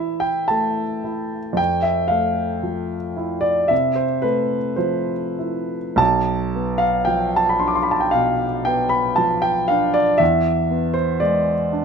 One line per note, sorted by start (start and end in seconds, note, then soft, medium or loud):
0.00 0.27 E3 soft
0.00 1.04 E4 soft
0.00 0.21 E5 medium
0.20 0.48 G5 medium
0.48 1.37 A3 soft
0.48 1.58 A5 medium
1.04 1.58 E4 soft
1.53 3.64 F2 medium
1.53 1.84 G5 medium
1.82 2.10 E5 medium
2.08 2.95 A3 soft
2.08 3.42 F5 medium
2.63 3.49 F3 soft
3.17 4.02 E4 soft
3.41 3.69 D5 medium
3.68 4.55 C3 soft
3.68 3.96 E5 medium
3.95 4.23 C5 medium
4.22 5.13 A3 soft
4.22 4.77 B4 medium
4.76 5.76 F3 soft
4.76 5.99 C5 medium
5.39 6.00 E4 soft
5.96 8.08 B1 medium
5.96 6.80 A5 medium
6.55 7.39 B3 soft
6.78 7.06 F5 medium
7.05 7.92 F3 soft
7.05 7.38 G5 medium
7.36 7.51 A5 medium
7.49 7.61 B5 medium
7.59 8.45 D4 soft
7.59 7.69 C6 medium
7.68 7.77 D6 medium
7.75 7.84 C6 medium
7.83 7.92 B5 medium
7.91 8.02 A5 medium
8.00 8.12 G5 medium
8.11 8.98 B2 soft
8.11 8.65 F5 medium
8.65 9.49 B3 soft
8.65 8.92 G5 medium
8.89 9.16 B5 medium
9.16 10.00 F3 soft
9.16 9.42 A5 medium
9.42 9.68 G5 medium
9.68 10.21 D4 soft
9.68 9.94 F5 medium
9.94 10.20 D5 medium
10.18 11.85 E2 medium
10.18 10.95 E5 medium
10.71 11.52 B3 soft
10.94 11.20 C5 medium
11.20 11.85 G#3 soft
11.20 11.85 D5 medium
11.72 11.85 D4 soft